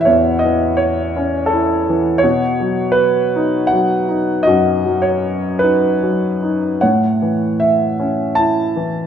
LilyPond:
<<
  \new Staff \with { instrumentName = "Grand piano" } { \time 3/4 \key b \mixolydian \tempo 4 = 79 << { e''8 dis''8 cis''4 a'8. r16 | cis''4 b'4 fis''4 | dis''8. cis''8. b'4 r8 | fis''4 e''4 a''4 | } \\ { cis''4. r4. | fis'4. r4. | fis'4. r4. | cis''4. r4. | } >> }
  \new Staff \with { instrumentName = "Grand piano" } { \clef bass \time 3/4 \key b \mixolydian <e, e cis' e'>8 e4 cis'8 e'8 e8 | b,8 fis4 dis'8 fis8 dis'8 | fis,8 fis4 dis'8 fis8 dis'8 | a,8 e4 cis'8 e'8 e8 | }
>>